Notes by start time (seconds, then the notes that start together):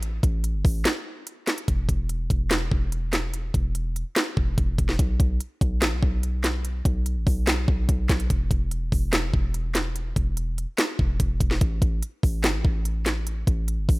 Already playing: A1
0.03 closed hi-hat
0.23 A1, kick, closed hi-hat
0.44 closed hi-hat
0.54 G1
0.65 A1, kick, open hi-hat
0.85 snare, clap, closed hi-hat
1.27 closed hi-hat
1.47 snare, clap, closed hi-hat
1.58 closed hi-hat
1.68 E1, kick, closed hi-hat
1.89 E1, kick, closed hi-hat
2.09 closed hi-hat
2.30 E1, kick, closed hi-hat
2.51 snare, clap, closed hi-hat
2.71 E1, kick
2.92 closed hi-hat
3.13 snare, clap, closed hi-hat
3.34 closed hi-hat
3.54 E1, kick, closed hi-hat
3.75 closed hi-hat
3.96 closed hi-hat
4.16 snare, clap, closed hi-hat
4.37 E1, kick
4.58 E1, kick, closed hi-hat
4.78 E1, kick, closed hi-hat
4.89 snare
4.99 B1, kick, closed hi-hat
5.20 B1, kick, closed hi-hat
5.40 closed hi-hat
5.61 B1, kick, closed hi-hat
5.82 A1, snare, clap, closed hi-hat
5.92 B1
6.03 B1, kick
6.23 closed hi-hat
6.44 snare, clap, closed hi-hat
6.65 closed hi-hat
6.85 B1, kick, closed hi-hat
7.06 closed hi-hat
7.16 A1
7.27 B1, kick, open hi-hat
7.47 snare, clap, closed hi-hat
7.68 B1, kick
7.89 B1, kick, closed hi-hat
8.09 B1, kick, snare, clap, closed hi-hat
8.20 closed hi-hat
8.30 E1, kick, closed hi-hat
8.51 E1, kick, closed hi-hat
8.71 closed hi-hat
8.92 E1, kick, open hi-hat
9.13 snare, clap, closed hi-hat
9.34 E1, kick
9.54 closed hi-hat
9.75 snare, clap, closed hi-hat
9.96 closed hi-hat
10.16 E1, kick, closed hi-hat
10.37 closed hi-hat
10.58 closed hi-hat
10.78 snare, clap, closed hi-hat
10.99 E1, kick
11.20 E1, kick, closed hi-hat
11.40 E1, kick, closed hi-hat
11.51 snare
11.61 A1, kick, closed hi-hat
11.82 A1, kick, closed hi-hat
12.03 closed hi-hat
12.23 A1, kick, open hi-hat
12.44 G1, snare, clap, closed hi-hat
12.54 A1
12.65 A1, kick
12.85 closed hi-hat
13.06 snare, clap, closed hi-hat
13.27 closed hi-hat
13.47 A1, kick, closed hi-hat
13.68 closed hi-hat
13.78 G1
13.89 A1, kick, open hi-hat